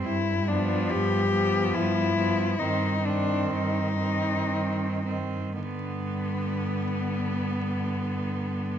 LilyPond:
<<
  \new Staff \with { instrumentName = "Cello" } { \time 3/4 \key g \major \tempo 4 = 60 e'8 d'8 g'4 e'4 | ees'8 d'8 ees'4. r8 | b2. | }
  \new Staff \with { instrumentName = "Cello" } { \time 3/4 \key g \major r8 b4 b4 b8 | c'8 c'4 c'4 c'8 | b2. | }
  \new Staff \with { instrumentName = "Cello" } { \clef bass \time 3/4 \key g \major r8 f4 f4 f8 | ees8 ees4 ees4 ees8 | d2. | }
  \new Staff \with { instrumentName = "Cello" } { \clef bass \time 3/4 \key g \major g,4 g,4 g,4 | g,4 g,4 g,4 | g,2. | }
>>